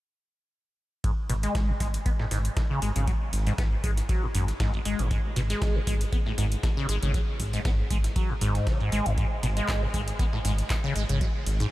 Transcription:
1.04 acid bass G#2, kick, closed hi-hat, ride
1.29 analog synth bass G#1, acid bass B2, open hi-hat, ride
1.43 acid bass G#3, closed hi-hat, ride
1.55 analog synth bass G#1, kick, snare, closed hi-hat, ride
1.69 acid bass G#2
1.80 analog synth bass G#1, acid bass G#3, kick, snare, open hi-hat, ride
1.94 closed hi-hat, ride
2.06 acid bass B3, kick, closed hi-hat, ride
2.19 acid bass A2, snare
2.31 analog synth bass G#1, acid bass G#2, snare, open hi-hat, ride
2.45 closed hi-hat
2.57 acid bass B2, kick, snare, closed hi-hat, ride
2.70 acid bass C#3
2.82 analog synth bass G#1, acid bass G#3, open hi-hat, ride
2.96 analog synth bass G#1, acid bass C#3, closed hi-hat
3.07 acid bass F#3, kick, closed hi-hat, ride
3.33 analog synth bass G#1, open hi-hat, ride
3.47 acid bass G#2, open hi-hat, ride
3.58 analog synth bass G#1, acid bass B3, kick, snare, closed hi-hat, ride
3.84 analog synth bass G#1, acid bass G#3, kick, open hi-hat, ride
3.97 snare, closed hi-hat
4.09 acid bass F#3, kick, closed hi-hat, ride
4.23 acid bass F#2
4.35 analog synth bass G#1, acid bass F#2, open hi-hat, ride
4.48 snare, closed hi-hat
4.60 acid bass G#2, kick, snare, closed hi-hat, ride
4.74 acid bass G#1, ride
4.85 analog synth bass G#1, acid bass G#3, open hi-hat, ride
4.99 analog synth bass G#1, acid bass G#2, closed hi-hat
5.11 acid bass G#2, kick, closed hi-hat, ride
5.36 analog synth bass G#1, acid bass B2, open hi-hat, ride
5.50 acid bass G#3, closed hi-hat, ride
5.62 analog synth bass G#1, kick, snare, closed hi-hat, ride
5.75 acid bass G#2
5.87 analog synth bass G#1, acid bass G#3, kick, snare, open hi-hat, ride
6.01 closed hi-hat, ride
6.12 acid bass B3, kick, closed hi-hat, ride
6.26 acid bass A2, snare
6.38 analog synth bass G#1, acid bass G#2, snare, open hi-hat, ride
6.52 closed hi-hat
6.63 acid bass B2, kick, snare, closed hi-hat, ride
6.77 acid bass C#3
6.89 analog synth bass G#1, acid bass G#3, open hi-hat, ride
7.03 analog synth bass G#1, acid bass C#3, closed hi-hat
7.14 acid bass F#3, kick, closed hi-hat, ride
7.40 analog synth bass G#1, kick, open hi-hat, ride
7.53 acid bass G#2, open hi-hat, ride
7.65 analog synth bass G#1, acid bass B3, kick, snare, closed hi-hat, ride
7.90 analog synth bass G#1, acid bass G#3, kick, open hi-hat, ride
8.04 snare, closed hi-hat
8.16 acid bass F#3, kick, closed hi-hat, ride
8.30 acid bass F#2
8.41 analog synth bass G#1, acid bass G#2, open hi-hat, ride
8.55 snare, closed hi-hat
8.67 acid bass C#3, kick, snare, closed hi-hat, ride
8.80 acid bass G#2, ride
8.92 analog synth bass G#1, acid bass G#3, open hi-hat, ride
9.06 analog synth bass G#1, acid bass F#2, closed hi-hat
9.18 acid bass G#2, kick, closed hi-hat, ride
9.43 analog synth bass G#1, acid bass B2, open hi-hat, ride
9.57 acid bass G#3, closed hi-hat, ride
9.68 analog synth bass G#1, kick, snare, clap, closed hi-hat, ride
9.82 acid bass G#2
9.94 analog synth bass G#1, acid bass G#3, kick, open hi-hat, ride
10.08 closed hi-hat, ride
10.19 acid bass B3, kick, closed hi-hat, ride
10.33 acid bass A2, snare
10.45 analog synth bass G#1, acid bass G#2, snare, open hi-hat, ride
10.58 closed hi-hat
10.70 acid bass B2, kick, snare, clap, closed hi-hat, ride
10.84 acid bass C#3
10.96 analog synth bass G#1, acid bass G#3, open hi-hat, ride
11.09 analog synth bass G#1, acid bass C#3, closed hi-hat
11.21 acid bass F#3, kick, closed hi-hat, ride
11.46 analog synth bass G#1, open hi-hat, ride
11.60 acid bass G#2, open hi-hat, ride

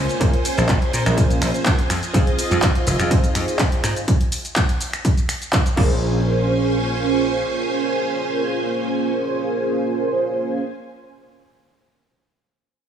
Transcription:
Already playing: analog polysynth A#3 C#4 F4 G#4 C5, string machine C#4 C5 G#5
0.09 closed hi-hat, shaker
0.20 slap bass A#1, analog polysynth A#3 C#4 F4 G#4 C5, kick, closed hi-hat, shaker
0.34 closed hi-hat
0.45 open hi-hat, shaker
0.58 slap bass A#1, closed hi-hat, shaker
0.69 slap bass A#1, kick, clap, closed hi-hat, shaker
0.82 closed hi-hat
0.93 slap bass A#2, open hi-hat, shaker
1.06 slap bass A#1, finger snap, closed hi-hat, shaker
1.17 analog polysynth A#3 C#4 F4 G#4 C5, kick, closed hi-hat, shaker
1.30 closed hi-hat, shaker
1.41 slap bass A#1, finger snap, open hi-hat, shaker
1.54 closed hi-hat, shaker
1.66 kick, clap, closed hi-hat, shaker
1.79 closed hi-hat
1.90 slap bass F2, string machine F4 D#5, finger snap, open hi-hat, shaker
2.03 closed hi-hat, shaker
2.13 slap bass F2, analog polysynth C4 D#4 F4 G#4 C5, kick, closed hi-hat, shaker
2.27 closed hi-hat
2.39 open hi-hat, shaker
2.51 slap bass F2, closed hi-hat, shaker
2.62 slap bass F2, kick, clap, closed hi-hat, shaker
2.75 closed hi-hat
2.87 slap bass F1, open hi-hat, shaker
2.99 slap bass F2, finger snap, closed hi-hat, shaker
3.10 analog polysynth C4 D#4 F4 G#4 C5, kick, closed hi-hat, shaker
3.24 closed hi-hat, shaker
3.35 slap bass F2, finger snap, open hi-hat, shaker
3.48 closed hi-hat, shaker
3.59 kick, clap, closed hi-hat, shaker
3.72 closed hi-hat
3.84 slap bass G#2, finger snap, open hi-hat, shaker
3.96 closed hi-hat, shaker
4.08 kick, closed hi-hat, shaker
4.21 closed hi-hat
4.32 open hi-hat, shaker
4.45 closed hi-hat, shaker
4.56 kick, clap, closed hi-hat, shaker
4.69 closed hi-hat
4.81 open hi-hat, shaker
4.93 finger snap, closed hi-hat, shaker
5.05 kick, closed hi-hat, shaker
5.17 closed hi-hat, shaker
5.29 finger snap, open hi-hat, shaker
5.42 closed hi-hat, shaker
5.53 kick, clap, closed hi-hat, shaker
5.66 closed hi-hat, shaker
5.76 slap bass A#1, analog polysynth A#3 C#4 F4 G#4 C5, string machine C#4 C5 G#5, kick, crash

